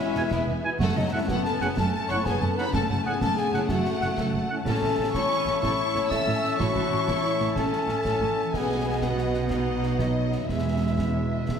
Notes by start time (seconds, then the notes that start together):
Already playing: E3 G#3 B3 C#4 E4 G#4 B4 E5 G#5
0.00 G#5
0.07 B5
0.15 E1 E2 B2 E4 G#4 G#5, snare
0.23 B4
0.31 E1 E2 B3 E4 G#4, concert bass drum, snare
0.38 B3
0.47 E1 E2 E4 B4
0.55 B3
0.63 B2 E4 G#5
0.72 B3
0.79 F#1 F#2 A3 F#4 A4 F#5 A5, concert bass drum, snare
0.88 C#3
0.96 F#1 F#2 F#3 A3 D#4 D#5 F#5
1.04 C#4
1.12 F#1 F#2 A2 G#3 C#4 E4 F#4 C#5 E5 F#5
1.20 A4
1.28 F#1 F#2 A3 B3 F#4 A4 C#5 F#5, concert bass drum, snare
1.37 F#5
1.45 C#4 A4 C#5 A5, snare
1.54 F#5
1.60 F#1 F#2 A2 B3 C#4 G#4 C#5 F#5 G#5, snare
1.69 F#5
1.76 F#1 F#2 A3 C#4 A4 C#5 A5, concert bass drum, snare
1.85 F#5
1.93 C#4 A4 C#5 A5
2.01 F#5
2.08 F#1 F#2 A2 C#4 E4 C#5 F#5 C#6, snare
2.17 F#4
2.25 F#1 F#2 B3 C#4 G#4 A4 G#5, concert bass drum, snare
2.34 C#3
2.41 F#1 F#2 A3 C#4 A4 F#5 A5
2.50 C#3
2.56 A2 A3 C#4 D#4 B4 F#5 B5, snare
2.66 C#3
2.73 F#1 F#2 A3 C#4 A4 A5, concert bass drum, snare
2.82 A3
2.88 F#1 F#2 C#3 C#4 A4 F#5 A5
2.98 C#4
3.05 F#1 F#2 A2 B3 C#4 F#4 G#4 C#5 F#5 G#5
3.14 A4
3.20 F#1 F#2 A3 C#4 A4 C#5 A5, concert bass drum, snare
3.31 F#5
3.36 B3 G#4 C#5 G#5, snare
3.47 F#5
3.53 F#1 F#2 A2 C#4 C#5 F#5, snare
3.63 F#5
3.68 F#1 F#2 A3 F#4 A4 C#5 F#5, concert bass drum, snare
3.78 F#5
3.85 C#5, snare
3.94 F#5
4.01 F#1 F#2 A2 C#4 C#5 F#5, snare
4.10 F#4
4.18 F#1 F#2 C#4 A4, concert bass drum, snare
4.27 C#3
4.34 F#1 F#2 A3 F#5
4.42 C#3
4.50 A2 A3 C#4 F#5
4.58 C#3
4.66 A1 A2 C#4 A4 E5 A5, concert bass drum, snare, crash
4.74 E3
4.82 A1 A2 A3 E5
4.91 C#4
4.98 A1 A2 E4 C#5
5.07 A4
5.14 A1 A2 C#4 E4 A4 C#5 C#6, concert bass drum, snare
5.23 E5
5.31 snare
5.39 E5
5.46 A1 A2 C#5, snare
5.56 E5
5.62 A1 A2 E4 A4 C#5 C#6, concert bass drum, snare
5.80 C#5
5.88 E5
5.95 A1 A2 C#5, snare
6.04 E4
6.10 A1 A2 C#4 A4 E5 E6, concert bass drum, snare
6.21 E3
6.28 A1 A2 A3 E5
6.36 E3
6.44 snare
6.52 E3
6.58 A1 A2 E4 F#4 A4 C#5 C#6, concert bass drum, snare
6.68 A3
6.75 A1 A2 E3 E5
6.91 A1 A2 E4 C#5
6.99 A4
7.08 A1 A2 E4 A4, concert bass drum, snare
7.16 E5
7.24 C#5, snare
7.40 A1 A2 C#5, snare
7.56 A1 A2 C#4 A4 C#5 A5, concert bass drum, snare
7.65 E5
7.73 C#5, snare
7.81 E5
7.88 A1 A2 C#5, snare
7.98 E4
8.05 A1 A2 C#4 A4, concert bass drum, snare
8.14 E3
8.21 A1 A2 A3 E5
8.29 E3
8.45 E3
8.53 B1 B2 B3 G#4 D#5 F#5 G#5, concert bass drum, snare
8.62 F#3
8.69 B3
8.85 F#4
8.94 B4
9.01 B3 F#4 D#5 F#5, concert bass drum, snare
9.10 F#5
9.18 D#5, snare
9.26 F#5
9.34 D#5, snare
9.43 F#5
9.50 B3 D#4 F#4 D#5 F#5, concert bass drum, snare
9.59 F#5
9.83 snare
9.91 F#4
9.99 F#3 D#4 D#5 F#5, concert bass drum, snare
10.09 F#3
10.26 F#3
10.32 B3, snare
10.41 F#3
10.49 E1 E2 E3 G#3 E4 E5 G#5, concert bass drum, snare
10.57 E2 G#3
10.66 E2 B3
10.73 E4
10.81 E2 G#4
10.90 B4
10.98 E5, concert bass drum, snare
11.06 G#5
11.12 E2 C#5
11.24 E2 G#5
11.32 D#5 E5
11.40 G#5
11.48 E2 E5, concert bass drum, snare